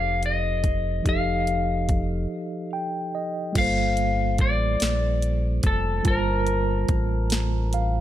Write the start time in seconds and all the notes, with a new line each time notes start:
Already playing: F1 F3 D#4 G4 A4 C5 F5
0.23 D#5, closed hi-hat
0.64 kick, closed hi-hat
1.02 F1 F3 D#4, kick, closed hi-hat
1.07 G4 A4 D#5 F5
1.47 closed hi-hat
1.89 kick, closed hi-hat
2.73 G5
3.15 D#5
3.53 G1 G3 F4, kick, closed hi-hat, crash
3.57 A#3 A4 C5 F5
3.97 closed hi-hat
4.38 A1 D5, kick, closed hi-hat
4.80 A#1, snare, closed hi-hat
5.22 closed hi-hat
5.63 F1 A4, kick, closed hi-hat
6.03 G1 G3 F4 A5, kick, closed hi-hat
6.08 A#4 C5
6.47 closed hi-hat
6.89 A1, kick, closed hi-hat
7.30 snare, closed hi-hat
7.73 F5, closed hi-hat